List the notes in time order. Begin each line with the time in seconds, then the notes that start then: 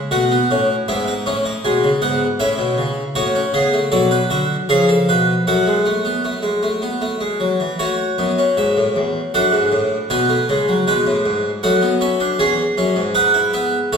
0.11 B2 A3 F#4 F#5
0.31 B3
0.51 A2 C#4
0.88 G#2 B3 E4 E5
1.08 D#4
1.26 A2 A3 C#4
1.45 D#4
1.65 B2 G#3 G#5
1.84 C#3
2.02 G#2 B3 F#5
2.40 A2 C#4 E4 E5
2.58 B2
2.78 C#3
3.15 A2 A3 F#4 C#5
3.35 C#4
3.54 C#3 B3 G#4
3.73 A3
3.92 B2 F#3 A4 D5
4.11 B4
4.30 D3 F#4 E5
4.69 C#3 F3 G#4 F5
4.89 A4
5.09 B2 B4
5.47 F#2 F#3 A4 F#5
5.67 G#3
5.86 A3
6.05 B3
6.25 A3
6.43 G#3
6.63 A3
6.82 B3
7.01 A3
7.21 G#3
7.40 F#3
7.60 E3
7.79 A3 F#4 C#5
8.18 F#2 B3
8.38 C#4
8.57 G#2 E5
8.77 A2
8.96 E2
9.34 F#2 D4 A4 F#5
9.52 G#2
9.72 A2
10.10 B2 B3 B4 G#5
10.29 A3
10.49 C#3 G#3
10.68 F#3
10.87 B2 G#3 B4
11.07 A2
11.26 G#2
11.63 F#2 A3 A4 F#5
11.82 B3
12.01 C#4 E5
12.20 D4
12.39 E2 C#4 G#4 G#5
12.78 F#2 C#4
12.96 G#2
13.15 D#4 B4 F#5
13.34 E4
13.53 B3 E5
13.93 A2 C#4 A4 C#5